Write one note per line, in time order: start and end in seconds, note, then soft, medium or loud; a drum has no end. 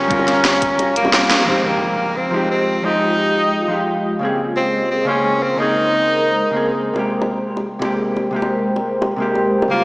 0.00 0.96 C#4 loud
0.00 1.45 G4 medium
0.00 1.45 F5 medium
0.00 1.45 A#5 loud
0.08 0.78 G1 loud
0.08 0.93 G3 medium
0.08 0.94 C#4 medium
0.08 0.95 F4 medium
0.08 kick loud
0.08 closed hi-hat medium
0.13 0.96 A#4 medium
0.19 high bongo soft
0.28 snare soft
0.28 closed hi-hat loud
0.45 snare loud
0.45 closed hi-hat medium
0.45 high bongo medium
0.62 kick loud
0.62 closed hi-hat loud
0.79 1.29 F1 medium
0.79 closed hi-hat medium
0.79 high bongo soft
0.96 1.44 A#3 medium
0.96 closed hi-hat loud
1.02 1.44 G3 medium
1.02 1.45 C#4 medium
1.02 1.46 F4 medium
1.02 high bongo medium
1.08 1.47 A#4 medium
1.13 snare loud
1.13 closed hi-hat medium
1.31 snare medium
1.31 closed hi-hat medium
1.39 high bongo medium
1.45 2.29 F3 medium
1.45 2.30 G#3 medium
1.45 9.66 G#3 medium
1.45 1.67 C4 medium
1.45 2.32 D#4 medium
1.45 4.19 F4 medium
1.45 4.19 G4 medium
1.45 4.19 D#5 medium
1.45 impact medium
1.50 2.33 G4 medium
1.65 2.18 A#3 medium
2.16 2.50 C4 loud
2.31 2.81 F3 medium
2.31 2.82 G#3 medium
2.31 2.83 D#4 medium
2.36 2.84 G4 loud
2.51 2.86 C4 medium
2.82 3.66 F3 medium
2.82 3.68 G#3 medium
2.82 3.88 D#4 loud
2.82 3.69 D#4 medium
2.88 3.70 G4 medium
3.68 4.19 F3 medium
3.68 4.19 G#3 medium
3.68 4.20 D#4 medium
3.73 4.21 G4 medium
4.19 5.04 C#3 medium
4.19 5.05 A#3 medium
4.19 5.06 C4 medium
4.19 6.93 A#4 medium
4.19 6.93 C5 medium
4.25 5.07 G#4 medium
4.56 4.88 C4 medium
4.91 5.09 C4 medium
5.05 5.55 C#3 medium
5.05 5.57 A#3 medium
5.05 5.44 C#4 loud
5.05 5.58 C5 medium
5.10 5.58 G#4 loud
5.42 5.61 C4 medium
5.56 6.41 C#3 medium
5.56 6.42 A#3 medium
5.56 6.43 C4 medium
5.56 6.79 D#4 loud
5.62 6.44 G#4 medium
6.51 6.93 C#3 medium
6.51 6.94 A#3 medium
6.51 6.95 C4 medium
6.56 6.96 G#4 medium
6.94 7.78 C3 medium
6.94 7.80 G#3 medium
6.94 7.80 A#3 medium
6.94 9.68 G4 medium
6.94 9.84 A#4 medium
6.94 9.68 C5 medium
6.94 high bongo soft
6.99 7.81 G4 medium
7.22 high bongo medium
7.57 high bongo medium
7.79 8.29 C3 medium
7.79 8.31 G#3 medium
7.79 8.32 A#3 medium
7.79 high bongo medium
7.85 8.33 G4 loud
8.16 high bongo medium
8.31 9.15 C3 medium
8.31 9.17 G#3 medium
8.31 9.18 A#3 medium
8.36 9.19 G4 medium
8.42 high bongo medium
8.76 high bongo soft
9.02 high bongo medium
9.16 9.67 C3 medium
9.16 9.68 G#3 medium
9.16 9.69 A#3 medium
9.22 9.70 G4 medium
9.35 high bongo medium
9.62 high bongo medium
9.68 9.84 C#3 medium
9.68 9.84 G3 medium
9.68 9.84 A#3 loud
9.68 9.84 A#3 medium
9.73 9.84 F4 medium